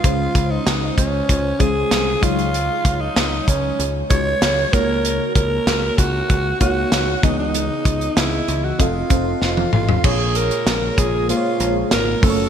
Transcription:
<<
  \new Staff \with { instrumentName = "Alto saxophone" } { \time 4/4 \key bes \minor \tempo 4 = 96 f'8. ees'8. des'4 aes'4 f'8~ | f'8. ees'8. des'8 r8 des''4 bes'8~ | bes'8 bes'4 ges'4 ges'4 dis'16 dis'16~ | dis'4 e'8. ges'16 f'4 f'8 f'8 |
aes'8 bes'4 aes'8 f'4 bes'8 a'8 | }
  \new Staff \with { instrumentName = "FM electric piano" } { \time 4/4 \key bes \minor <aes des' f' c''>4~ <aes des' f' c''>16 r4 r16 <aes des' f' c''>4 <ges aes ees' des''>8~ | <ges aes ees' des''>4 r4. <aes ees' ges' des''>4 <bes ees' ges' des''>8~ | <bes ees' ges' des''>4 r4. <bes ees' ges' des''>4 <e b gis' dis''>8~ | <e b gis' dis''>4 r4 <c' f' a' ees''>8 <c' f' a' c''>4 r8 |
<bes f' aes' des''>4~ <bes f' aes' des''>16 r8. <bes f' aes' c'' des''>4~ <bes f' aes' c'' des''>16 r16 <a des' ges' c'' des''>8 | }
  \new Staff \with { instrumentName = "FM electric piano" } { \clef bass \time 4/4 \key bes \minor des4. r2 des8~ | des4 r2 r8 des8~ | des4 r2 r8 des8~ | des4 r2. |
bes,4. r2 r8 | }
  \new Staff \with { instrumentName = "Ambient pad" } { \clef bass \time 4/4 \key bes \minor r1 | r1 | r1 | r1 |
<des aes bes f'>2.~ <des aes bes f'>8 <des ges a ges'>8 | }
  \new Staff \with { instrumentName = "Picked electric bass" } { \clef bass \time 4/4 \key bes \minor des,8 des,8 des,8 des,8 des,8 des,8 c,8 des,8~ | des,8 des,8 des,8 des,8 des,8 des,8 des,8 des,8~ | des,8 des,8 des,8 des,8 des,8 des,8 des,8 des,8~ | des,8 des,8 des,8 des,8 f,,8 f,,8 f,,8 a,,8 |
bes,,4 bes,,8 bes,,8. r16 bes,,8 aes,,8 ges,,8 | }
  \new DrumStaff \with { instrumentName = "Drums" } \drummode { \time 4/4 <hh bd>8 <hh bd>8 <hh sn>8 <hh bd>8 <hh bd>8 <hh bd>8 <hh sn>8 <hh bd>16 hh16 | hh8 <hh bd>8 <hh sn>8 <hh bd>8 hh8 <hh bd>8 <hh sn>8 <hh bd>8 | hh8 <hh bd>8 <hh sn>8 <hh bd>8 <hh bd>8 <hh bd>8 <hh sn>8 <hh bd>8 | hh8 <hh bd>16 hh16 <hh sn>8 hh8 <hh bd>8 <hh bd>8 sn16 tommh16 toml16 tomfh16 |
<cymc bd>8 hh16 hh16 <hh sn>8 <hh bd>8 hh8 hh8 <hh sn>8 <hho bd>8 | }
>>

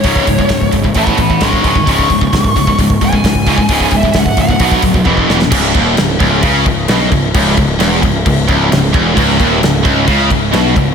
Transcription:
<<
  \new Staff \with { instrumentName = "Lead electric guitar" } { \time 4/4 \key cis \minor \tempo 4 = 132 cis''4. r8 <fis'' b''>8 <fis'' b''>8 <gis'' cis'''>8 <gis'' cis'''>8 | cis'''2 r8 gis''4.~ | gis''8 e''8 fis''8 fis''8 r2 | r1 |
r1 | r1 | }
  \new Staff \with { instrumentName = "Distorted electric guitar" } { \clef bass \time 4/4 \key cis \minor <cis, gis, cis>8 <cis, gis,>16 <cis, gis,>16 <cis, gis,>8 <cis, gis,>16 <cis, gis,>16 <a, e a>8 <a, e>16 <a, e>16 <gis, dis gis>8 <gis, dis gis>16 <gis, dis>16 | <cis, gis, cis>8 <cis, gis,>16 <cis, gis,>16 <cis, gis,>8 <cis, gis,>16 <cis, gis,>16 <cis, gis,>8 <cis, gis,>16 <cis, gis,>16 <cis, gis,>8 <cis, gis, cis>16 <cis, gis,>16 | <cis, gis, cis>8 <cis, gis,>16 <cis, gis,>16 <cis, gis,>8 <cis, gis,>16 <cis, gis,>16 <b, fis b>8 <b, fis>16 <b, fis>16 <e, b, e>8 <e, b, e>16 <e, b,>16 | cis,8 dis,8 cis,8 cis,8 cis8 cis,8 b,8 cis,8 |
cis,8 cis,8 e,8 cis,8 cis,8 cis,8 cis,8 e,8 | cis,8 dis,8 cis,8 cis,8 cis8 cis,8 b,8 cis,8 | }
  \new Staff \with { instrumentName = "Distorted electric guitar" } { \clef bass \time 4/4 \key cis \minor <cis, gis, cis>8 <cis, gis,>16 <cis, gis,>16 <cis, gis,>8 <cis, gis,>16 <cis, gis,>16 <a, e a>8 <a, e>16 <a, e>16 <gis, dis gis>8 <gis, dis gis>16 <gis, dis>16 | <cis, gis, cis>8 <cis, gis,>16 <cis, gis,>16 <cis, gis,>8 <cis, gis,>16 <cis, gis,>16 <cis, gis,>8 <cis, gis,>16 <cis, gis,>16 <cis, gis,>8 <cis, gis, cis>16 <cis, gis,>16 | <cis, gis, cis>8 <cis, gis,>16 <cis, gis,>16 <cis, gis,>8 <cis, gis,>16 <cis, gis,>16 <b, fis b>8 <b, fis>16 <b, fis>16 <e, b, e>8 <e, b, e>16 <e, b,>16 | cis,8 dis,8 cis,8 cis,8 cis8 cis,8 b,8 cis,8 |
cis,8 cis,8 e,8 cis,8 cis,8 cis,8 cis,8 e,8 | cis,8 dis,8 cis,8 cis,8 cis8 cis,8 b,8 cis,8 | }
  \new Staff \with { instrumentName = "Distorted electric guitar" } { \clef bass \time 4/4 \key cis \minor r1 | r1 | r1 | r1 |
r1 | cis,8 dis,8 cis,8 cis,8 cis8 cis,8 b,8 cis,8 | }
  \new Staff \with { instrumentName = "Picked electric bass" } { \clef bass \time 4/4 \key cis \minor cis,,8 cis,,8 cis,,8 gis,,8 a,,8 a,,8 gis,,8 d,,8 | cis,,8 cis,,8 cis,,8 cis,,8 cis,,8 cis,,8 cis,4 | cis,,8 cis,,8 cis,,8 cis,,8 b,,8 d,,8 e,,8 e,,8 | cis,,8 dis,,8 cis,,8 cis,,8 cis,8 cis,,8 b,,8 cis,,8 |
cis,,8 cis,,8 e,,8 cis,,8 cis,,8 cis,,8 cis,,8 e,,8 | cis,,8 dis,,8 cis,,8 cis,,8 cis,8 cis,,8 b,,8 cis,,8 | }
  \new DrumStaff \with { instrumentName = "Drums" } \drummode { \time 4/4 <hho bd>16 bd16 <hho bd>16 bd16 <hho bd sn>16 bd16 <hho bd>16 bd16 <hho bd>16 bd16 <hho bd>16 bd16 <hho bd sn>16 bd16 <hho bd>16 bd16 | <hho bd>16 bd16 <hho bd>16 bd16 <hho bd sn>16 bd16 <hho bd>16 bd16 <hho bd>16 bd16 <hho bd>16 bd16 <hho bd sn>16 bd16 <hho bd>16 bd16 | <hho bd>16 bd16 <hho bd>16 bd16 <hho bd sn>16 bd16 <hho bd>16 bd16 <hho bd>16 bd16 <hho bd>16 bd16 <bd tommh>16 bd16 sn16 sn16 | <cymc bd>8 <cymc bd>8 <cymc sn>8 <cymc bd>8 <cymc bd>8 <cymc bd>8 <cymc sn>8 <cymc bd>8 |
<cymc bd>8 <cymc bd>8 <cymc sn>8 <cymc bd>8 <cymc bd>8 <cymc bd>8 <cymc sn>8 <cymc bd>8 | <cymc bd>8 <cymc bd>8 <cymc sn>8 <cymc bd>8 <cymc bd>8 <cymc bd>8 <cymc sn>8 <cymc bd>8 | }
>>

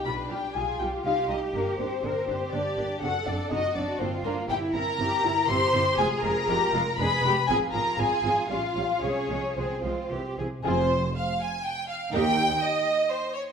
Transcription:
<<
  \new Staff \with { instrumentName = "Violin section" } { \time 3/4 \key g \phrygian \tempo 4 = 121 b''8 g''8 aes''8 g''8 f''8 ees''8 | bes'8 c''4. d''4 | fis''8 d''8 ees''8 d''8 c''8 bes'8 | \key f \minor g''8 bes''4. c'''4 |
aes''8 bes''4. ces'''4 | aes''8 bes''8 aes''4 f''4 | des''4 c''4. r8 | aes'8 r2 r8 |
bes'8 r2 r8 | }
  \new Staff \with { instrumentName = "Violin section" } { \time 3/4 \key g \phrygian b'8 g'8 aes'8 g'8 f'8 ees'8 | bes8 c'4. d'4 | fis'8 d'8 ees'8 d'8 c'8 bes8 | \key f \minor g'8 bes'4. c''4 |
aes'8 bes'4. ces''4 | aes'8 bes'8 aes'4 f'4 | des'4 c'4. r8 | c''4 f''8 aes''8 g''8 f''8 |
g''4 ees''4 c''8 des''8 | }
  \new Staff \with { instrumentName = "Cello section" } { \time 3/4 \key g \phrygian d'4 f'4 g'4~ | g'4 bes'8 g'4. | a'4 fis'4 f'4 | \key f \minor e'4 g'8 e'8 g'4 |
aes'4 g'8 f'8 aes'8 g'8 | f'2. | aes'4 aes'8 f'8 g'8 aes'8 | f,4 r2 |
ees,4 r2 | }
  \new Staff \with { instrumentName = "Viola section" } { \time 3/4 \key g \phrygian <g f'>8 <g f'>8 <g f'>8 <g f'>8 <g ees'>8 <g ees'>8 | <bes d'>8 <bes d'>8 <bes d'>8 <bes d'>8 <bes d'>8 <bes d'>8 | <c' d'>8 <c' d'>8 <c' d'>8 <c' d'>8 <bes d'>8 <bes d'>8 | \key f \minor <c' e'>8 <c' e'>8 <c' e'>8 <c' e'>8 <c' e'>8 <c' e'>8 |
<aes f'>8 <aes f'>8 <aes f'>8 <aes f'>8 <aes d'>8 <aes d'>8 | <f c'>8 <f c'>8 <f c'>8 <f c'>8 <g des'>8 <g des'>8 | <f aes>8 <f aes>8 <f aes>8 <f aes>8 <e c'>8 <e c'>8 | <c' f'>8 r2 r8 |
<ees' g'>8 r2 r8 | }
  \new Staff \with { instrumentName = "Double bass section" } { \clef bass \time 3/4 \key g \phrygian b,,8 b,,8 b,,8 b,,8 c,8 c,8 | g,,8 g,,8 g,,8 g,,8 g,,8 g,,8 | fis,,8 fis,,8 fis,,8 fis,,8 g,,8 g,,8 | \key f \minor g,,8 g,,8 g,,8 g,,8 g,,8 g,,8 |
f,,8 f,,8 f,,8 f,,8 f,,8 f,,8 | aes,,8 aes,,8 aes,,8 aes,,8 bes,,8 bes,,8 | c,8 c,8 c,8 c,8 c,8 c,8 | f,,4 r2 |
ees,4 r2 | }
>>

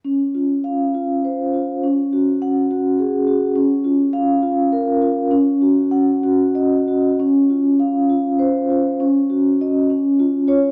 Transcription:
\new Staff \with { instrumentName = "Vibraphone" } { \time 6/8 \key des \major \tempo 4. = 67 << { r4 f''4 r4 | r4 ges''4 r4 | r4 f''4 r4 | r4 ges''4 r4 |
r4 f''4 r4 | r4 ees''8 r4 des''8 | } \\ { des'8 f'4 f'8 c''8 f'8 | des'8 ges'4 ges'8 aes'8 ges'8 | des'8 f'4 f'8 bes'8 f'8 | des'8 ges'4 ges'8 ees''8 ges'8 |
des'8 f'4 f'8 c''8 f'8 | des'8 ges'8 ges'8 des'8 f'8 f'8 | } >> }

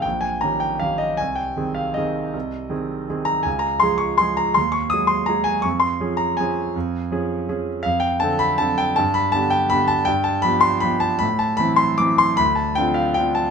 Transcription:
<<
  \new Staff \with { instrumentName = "Grand piano" } { \time 3/4 \key aes \major \tempo 4 = 160 g''8 aes''8 bes''8 g''8 f''8 ees''8 | aes''8 g''4 f''8 ees''4~ | ees''2~ ees''8 bes''8 | aes''8 bes''8 c'''8 des'''8 c'''8 bes''8 |
c'''8 des'''8 ees'''8 c'''8 bes''8 aes''8 | des'''8 c'''4 bes''8 aes''4~ | aes''2~ aes''8 r8 | \key d \dorian f''8 g''8 a''8 b''8 a''8 g''8 |
a''8 b''8 a''8 g''8 b''8 a''8 | g''8 a''8 b''8 c'''8 b''8 a''8 | b''8 a''8 b''8 c'''8 d'''8 c'''8 | b''8 a''8 g''8 f''8 g''8 a''8 | }
  \new Staff \with { instrumentName = "Grand piano" } { \time 3/4 \key aes \major bes,,4 <ees des' g'>4 <ees des' g'>4 | c,4 <ees c' aes'>4 <ees c' aes'>4 | c,4 <ees c' aes'>4 <ees c' aes'>4 | des,4 <f aes aes'>4 <f aes aes'>4 |
ees,4 <ges aes aes'>4 <ges aes aes'>4 | f,4 <f des' aes'>4 <f des' aes'>4 | f,4 <f des' aes'>4 <f des' aes'>4 | \key d \dorian f,4 <d c' a'>4 <d c' a'>4 |
g,4 <d b g'>4 <d b g'>4 | g,4 <f b g'>4 <f b g'>4 | a,4 <e c' e'>4 <e c' e'>4 | d,4 <d c' f'>4 <d c' f'>4 | }
>>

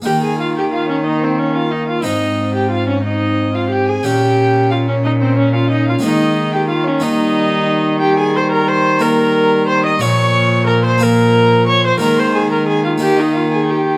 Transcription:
<<
  \new Staff \with { instrumentName = "Violin" } { \time 6/8 \key ees \mixolydian \tempo 4. = 60 g''16 aes''16 f''16 g''16 f''16 des''16 ees''16 c''16 des''16 f''16 ees''16 f''16 | ees''8. g''16 f''16 des''16 ees''8. f''16 g''16 aes''16 | g''4 f''16 des''16 ees''16 c''16 des''16 f''16 ees''16 f''16 | ees''8. g''16 f''16 des''16 ees''4. |
g''16 aes''16 c'''16 bes''16 c'''8 bes''4 c'''16 ees'''16 | des'''4 bes''16 c'''16 bes''4 des'''16 c'''16 | bes''16 c'''16 aes''16 bes''16 aes''16 f''16 g''16 ees''16 f''16 aes''16 g''8 | }
  \new Staff \with { instrumentName = "Viola" } { \time 6/8 \key ees \mixolydian g'16 aes'16 f'16 g'16 f'16 des'16 ees'16 c'16 des'16 f'16 ees'16 f'16 | ees'8. g'16 f'16 des'16 ees'8. f'16 g'16 aes'16 | g'4 f'16 des'16 ees'16 c'16 des'16 f'16 ees'16 f'16 | ees'8. g'16 f'16 des'16 ees'4. |
g'16 aes'16 c''16 bes'16 c''8 bes'4 c''16 ees''16 | des''4 bes'16 c''16 bes'4 des''16 c''16 | bes'16 c''16 aes'16 bes'16 aes'16 f'16 g'16 ees'16 f'16 aes'16 g'8 | }
  \new Staff \with { instrumentName = "Harpsichord" } { \time 6/8 \key ees \mixolydian << { <bes ees'>2. | <aes c' ees'>2. | <bes des'>2. | <aes bes ees'>4. <bes ees'>4.~ |
<bes ees'>4. <bes ees'>4. | <bes f'>4. <bes f'>4. | <aes bes ees'>4. <bes ees'>4. | } \\ { ees2. | aes,2. | bes,2. | ees2.~ |
ees2. | bes,2. | ees2. | } >> }
  \new Staff \with { instrumentName = "Trombone" } { \clef bass \time 6/8 \key ees \mixolydian bes4. bes4. | c'4. c'4. | des'2. | aes4 r8 g4. |
g4. g4. | f4. f4. | aes4. bes4 r8 | }
  \new Staff \with { instrumentName = "Cello" } { \clef bass \time 6/8 \key ees \mixolydian ees2. | aes,2. | bes,2. | ees2.~ |
ees2. | bes,2. | ees2. | }
>>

